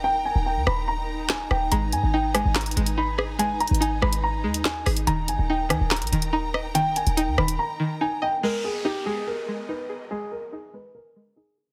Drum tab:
HH |------------------------------------------------------------------------------------------------|x-----------x-----------------------x-----------x--x--x--x--x-----x-----------------------------|x-----------x---x---x---x-----------------x-----------------------x-----------------o-----x-----|x-----------x-----------------------x-----------x--x--x--x--x-----x-----------------------------|
CP |------------------------------------------------------------------------x-----------------------|------------------------------------------------x-----------------------------------------------|------------------------------------------------------------------------x-----------------------|------------------------------------------------x-----------------------------------------------|
SD |------------------------------------r-----------------------------------o-----------r-----------|------------------------------------r-----------o-----------------------------------r-----------|------------------------------------r-----------------------------------o-----------r-----------|------------------------------------r-----------o-----------------------------------r-----------|

HH |x-----------x-----x-----x-----------------x-----------------------------------------------------|------------------------------------------------------------------------------------------------|------------------------------------------------------------------------------------------------|
CP |------------------------------------------------------------------------------------------------|------------------------------------------------------------------------------------------------|------------------------------------------------------------------------------------------------|
SD |------------------------------------r-----------------------------------------------------------|------------------------------------------------------------------------------------------------|------------------------------------------------------------------------------------------------|